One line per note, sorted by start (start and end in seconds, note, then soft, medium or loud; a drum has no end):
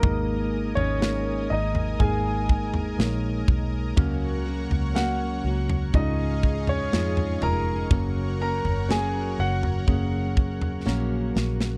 0.00 0.74 G#1 loud
0.00 0.97 G#3 medium
0.00 0.74 A#3 medium
0.00 0.97 A#3 medium
0.00 0.97 D#4 medium
0.00 0.79 A#4 medium
0.00 3.93 D#5 medium
0.00 3.93 D#6 medium
0.00 kick loud
0.00 floor tom loud
0.04 0.97 G#4 medium
0.04 5.90 A#4 medium
0.04 0.98 A#4 medium
0.04 3.94 G#5 medium
0.75 1.47 G#1 loud
0.75 1.48 C#4 medium
0.75 1.46 C#5 loud
0.75 floor tom medium
1.00 1.95 G#3 medium
1.00 1.95 A#3 medium
1.00 1.95 D#4 medium
1.00 1.95 G#4 medium
1.00 1.95 A#4 medium
1.00 snare loud
1.50 1.97 G#1 loud
1.50 1.98 D#4 medium
1.50 2.01 D#5 medium
1.75 floor tom medium
1.99 2.95 G#1 loud
1.99 2.93 G#3 medium
1.99 2.94 A#3 medium
1.99 2.93 D#4 medium
1.99 2.94 G#4 medium
1.99 2.95 G#4 medium
1.99 2.94 A#4 medium
1.99 2.94 G#5 loud
1.99 kick medium
1.99 floor tom medium
2.49 kick medium
2.74 floor tom medium
2.98 3.45 A#1 medium
2.98 3.92 G#3 medium
2.98 3.92 A#3 medium
2.98 3.92 D#4 medium
2.98 3.92 G#4 medium
2.98 3.92 C#5 medium
2.98 snare loud
3.48 3.94 B1 medium
3.48 kick loud
3.48 floor tom medium
3.96 4.67 C#2 loud
3.96 4.46 C#3 medium
3.96 5.40 C#3 medium
3.96 4.90 F#3 medium
3.96 4.46 F#3 medium
3.96 4.90 A#3 medium
3.96 4.46 A#3 medium
3.96 4.90 C#4 medium
3.96 4.46 C#4 medium
3.96 4.91 F#4 medium
3.96 4.44 F#4 loud
3.96 4.91 A#4 loud
3.96 5.92 C#5 medium
3.96 5.93 F#5 medium
3.96 5.93 C#6 medium
3.96 kick loud
3.96 floor tom loud
4.45 4.95 A#3 medium
4.45 4.95 C#4 medium
4.45 4.95 F#4 medium
4.71 5.41 C#2 medium
4.71 floor tom medium
4.94 5.44 C#3 medium
4.94 5.88 F#3 medium
4.94 5.45 F#3 medium
4.94 5.88 A#3 medium
4.94 5.45 A#3 medium
4.94 5.88 C#4 medium
4.94 5.44 C#4 medium
4.94 5.88 F#4 medium
4.94 5.42 F#4 medium
4.94 5.91 F#4 medium
4.94 5.89 A#4 medium
4.94 5.97 F#5 loud
4.94 snare loud
5.44 5.90 C#2 loud
5.44 5.93 A#3 soft
5.44 5.92 C#4 medium
5.44 5.93 F#4 medium
5.69 floor tom medium
5.93 6.88 C#2 loud
5.93 7.37 G#2 medium
5.93 6.87 G#3 medium
5.93 6.92 C#4 medium
5.93 6.87 C#4 medium
5.93 6.88 D#4 medium
5.93 6.65 D#4 medium
5.93 6.91 F4 medium
5.93 6.88 F4 medium
5.93 6.92 G#4 medium
5.93 6.88 G#4 medium
5.93 7.89 G#4 medium
5.93 7.89 D#5 medium
5.93 6.92 D#5 medium
5.93 6.70 D#5 loud
5.93 7.89 F5 medium
5.93 11.78 C#6 medium
5.93 kick medium
5.93 floor tom medium
6.43 kick medium
6.67 7.38 C#4 medium
6.67 7.44 C#5 loud
6.67 floor tom medium
6.92 7.38 F2 medium
6.92 7.86 G#3 medium
6.92 7.85 C#4 medium
6.92 7.41 C#4 medium
6.92 7.86 D#4 medium
6.92 7.42 F4 medium
6.92 7.86 F4 medium
6.92 7.86 G#4 medium
6.92 7.41 G#4 medium
6.92 7.40 D#5 medium
6.92 snare loud
7.17 floor tom medium
7.41 7.87 F1 medium
7.41 7.92 F4 soft
7.41 7.91 G#4 medium
7.41 8.37 A#4 medium
7.41 7.90 D#5 medium
7.41 8.40 A#5 loud
7.41 floor tom medium
7.90 8.61 F#1 loud
7.90 8.40 F#2 medium
7.90 9.34 C#3 medium
7.90 8.84 F#3 medium
7.90 8.40 F#3 medium
7.90 8.84 A#3 medium
7.90 8.40 A#3 medium
7.90 8.84 C#4 medium
7.90 8.40 C#4 medium
7.90 8.84 F#4 medium
7.90 8.40 F#4 medium
7.90 8.84 A#4 medium
7.90 11.78 A#4 medium
7.90 8.39 A#4 medium
7.90 11.78 C#5 medium
7.90 11.78 F#5 medium
7.90 kick loud
7.90 floor tom loud
8.40 8.88 A#3 medium
8.40 8.89 C#4 medium
8.40 8.89 F#4 medium
8.40 8.89 A#4 medium
8.40 8.86 A#4 medium
8.40 8.91 A#5 loud
8.65 9.34 F#1 medium
8.65 floor tom medium
8.88 9.38 F#2 medium
8.88 9.82 F#3 medium
8.88 9.38 F#3 medium
8.88 9.82 A#3 medium
8.88 9.38 A#3 medium
8.88 9.82 C#4 medium
8.88 9.39 C#4 medium
8.88 9.82 F#4 medium
8.88 9.38 F#4 medium
8.88 9.36 G#4 medium
8.88 9.37 A#4 medium
8.88 9.82 C#5 medium
8.88 9.36 G#5 loud
8.88 snare loud
9.38 9.84 F#1 medium
9.38 9.86 A#3 soft
9.38 9.86 C#4 soft
9.38 9.87 F#4 medium
9.38 11.32 F#4 medium
9.38 9.87 A#4 medium
9.38 11.32 F#5 loud
9.63 floor tom medium
9.87 10.82 F#1 loud
9.87 10.80 F#3 medium
9.87 10.81 A#3 medium
9.87 10.85 A#3 medium
9.87 10.81 C#4 medium
9.87 10.85 C#4 medium
9.87 10.81 F#4 medium
9.87 10.86 F#4 medium
9.87 10.81 G#4 medium
9.87 10.86 A#4 medium
9.87 kick medium
9.87 floor tom medium
10.37 kick medium
10.62 floor tom medium
10.85 11.32 A#1 medium
10.85 11.35 F#2 medium
10.85 11.78 F#3 medium
10.85 11.35 F#3 medium
10.85 11.35 A#3 loud
10.85 11.78 A#3 medium
10.85 11.35 C#4 medium
10.85 11.78 C#4 medium
10.85 11.78 F#4 medium
10.85 11.34 F#4 medium
10.85 11.78 A#4 loud
10.85 11.33 A#4 medium
10.85 snare medium
11.35 11.78 A#1 medium
11.35 11.78 A#3 soft
11.35 11.78 C#4 medium
11.35 11.78 F#4 medium
11.35 11.78 A#4 medium
11.35 snare loud
11.61 snare medium